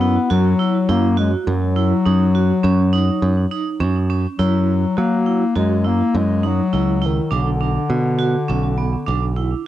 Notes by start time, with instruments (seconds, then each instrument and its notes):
Already playing: picked electric bass F#2, bass clarinet B3
0.01 vibraphone E4
0.30 picked electric bass F#2, bass clarinet F#3, vibraphone F#4
0.59 vibraphone E4
0.89 picked electric bass F#2, bass clarinet A#3, vibraphone E4
1.17 bass clarinet G#3, vibraphone F#4
1.47 picked electric bass F#2, bass clarinet F#3
1.76 vibraphone E4
2.06 picked electric bass F#2, vibraphone D#4
2.35 vibraphone F#4
2.64 picked electric bass F#2, vibraphone C#4
2.93 vibraphone D#4
3.22 picked electric bass F#2
3.51 vibraphone D#4
3.80 picked electric bass F#2, vibraphone C#4
4.10 vibraphone C#4
4.39 picked electric bass F#2, bass clarinet F#3, vibraphone E4
4.97 picked electric bass F#3, bass clarinet A#3, vibraphone F#4
5.26 vibraphone E4
5.56 picked electric bass F#2, bass clarinet G#3, vibraphone F#4
5.85 bass clarinet A#3, vibraphone E4
6.15 picked electric bass F#2, bass clarinet G#3
6.43 bass clarinet F#3, vibraphone D#4
6.73 picked electric bass C#2, vibraphone E4
7.02 bass clarinet D#3, vibraphone E4
7.31 picked electric bass B1, bass clarinet D3, vibraphone D4
7.61 vibraphone D4
7.90 picked electric bass B2
8.19 vibraphone F#4
8.48 picked electric bass B1, vibraphone C#4
8.78 vibraphone B3
9.07 picked electric bass B1, vibraphone D4
9.36 vibraphone E4